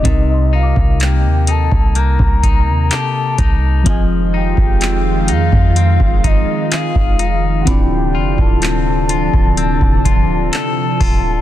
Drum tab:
HH |x---x-x-x-x-x-x-|x---x-x-x-x-x-x-|x---x-x-x-x-x-o-|
CP |----x-------x---|----x-------x---|----x-------x---|
BD |o--o---o-oo---o-|o--o---o-oo--o--|o--o---o-oo---o-|